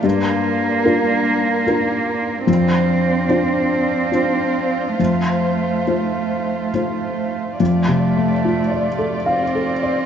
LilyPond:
<<
  \new Staff \with { instrumentName = "Felt piano" } { \time 3/4 \key f \major \tempo 4 = 72 g,4 <d' f' bes'>4 <d' f' bes'>4 | f,4 <d' f' c''>4 <d' f' c''>4 | f,4 <a f' c''>4 <a f' c''>4 | \tuplet 3/2 { f,8 c8 a8 f'8 d''8 a'8 f''8 a'8 d''8 } | }
  \new Staff \with { instrumentName = "String section" } { \time 3/4 \key f \major << { <f' bes'>2. | <f' c''>2.~ | <f' c''>2. | <f' d''>2. | } \\ { d'2. | d'2. | a2. | a2. | } >> }
  \new Staff \with { instrumentName = "Cello" } { \time 3/4 \key f \major bes2. | c'2. | a2~ a8. r16 | a2 c'4 | }
>>